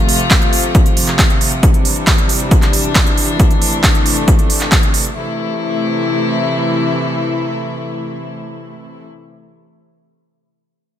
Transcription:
Already playing: string section C3 F3 A3 F4
0.09 open hi-hat
0.20 closed hi-hat
0.31 kick, clap, closed hi-hat
0.42 closed hi-hat
0.53 open hi-hat
0.64 closed hi-hat
0.75 kick, closed hi-hat
0.86 closed hi-hat
0.97 open hi-hat
1.08 clap, closed hi-hat
1.19 kick, clap, closed hi-hat
1.30 closed hi-hat
1.41 open hi-hat
1.52 closed hi-hat
1.63 string section E3 G3 D4, kick, closed hi-hat
1.74 closed hi-hat
1.85 open hi-hat
1.96 closed hi-hat
2.07 kick, clap, closed hi-hat
2.18 closed hi-hat
2.29 open hi-hat
2.40 closed hi-hat
2.51 kick, closed hi-hat
2.62 clap, closed hi-hat
2.73 open hi-hat
2.84 closed hi-hat
2.95 kick, clap, closed hi-hat
3.06 closed hi-hat
3.17 open hi-hat
3.28 closed hi-hat
3.40 string section A3, kick, closed hi-hat
3.51 closed hi-hat
3.62 open hi-hat
3.73 closed hi-hat
3.84 kick, clap, closed hi-hat
3.95 closed hi-hat
4.06 open hi-hat
4.17 closed hi-hat
4.28 kick, closed hi-hat
4.39 closed hi-hat
4.50 open hi-hat
4.61 clap, closed hi-hat
4.72 kick, clap, closed hi-hat
4.83 closed hi-hat
4.94 open hi-hat
5.05 closed hi-hat
5.16 string section C3 E3 A3 E4

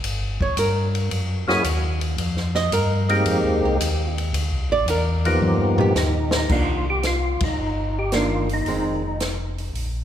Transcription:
0.03 tonewheel organ G1, ride
0.40 tonewheel organ G1, hollow-body jazz guitar C#5, kick
0.57 tonewheel organ G2, hollow-body jazz guitar A#4, hi-hat pedal, ride
0.95 ride
1.11 tonewheel organ F#2, ride
1.48 tonewheel organ F#2 F#3 A#3 C#4 E4 G#4, hollow-body jazz guitar F#4, snare
1.64 tonewheel organ D#2, hi-hat pedal, ride
2.01 ride
2.18 tonewheel organ F2, ride
2.37 snare
2.55 hollow-body jazz guitar D#5, snare
2.72 tonewheel organ G2, hollow-body jazz guitar A#4, hi-hat pedal, ride
3.09 tonewheel organ G#3 A#3 C4 D#4 G4, ride
3.25 tonewheel organ F2, ride
3.44 tonewheel organ D#2
3.62 tonewheel organ C2, hollow-body jazz guitar G4
3.80 tonewheel organ D#2, hi-hat pedal, ride
4.18 ride
4.33 tonewheel organ D2, ride
4.51 tonewheel organ C2
4.69 tonewheel organ A1, hollow-body jazz guitar D5
4.86 tonewheel organ E2, hi-hat pedal, ride
4.90 hollow-body jazz guitar A#4
5.25 tonewheel organ F3 A#3 B3 D#4 G4, ride
5.41 tonewheel organ G2, mid tom
5.78 hollow-body jazz guitar G4, floor tom
5.95 tonewheel organ D#2 D#4, snare, hi-hat pedal
6.31 snare
6.36 tonewheel organ D#4
6.49 tonewheel organ C2 F4, hollow-body jazz guitar D#3 A#3 D4, kick, crash
6.90 tonewheel organ G4
7.03 tonewheel organ F4, snare, closed hi-hat
7.40 tonewheel organ C2 D#4, kick, ride
7.58 tonewheel organ G1
7.99 tonewheel organ G4
8.12 hollow-body jazz guitar D#3 A#3 D4, tonewheel organ F4, snare, closed hi-hat
8.49 open hi-hat
8.53 tonewheel organ D#4
8.65 tonewheel organ F1, hollow-body jazz guitar D#3 G#3 C4, open hi-hat
9.20 snare, closed hi-hat
9.58 open hi-hat
9.74 tonewheel organ A#1, open hi-hat

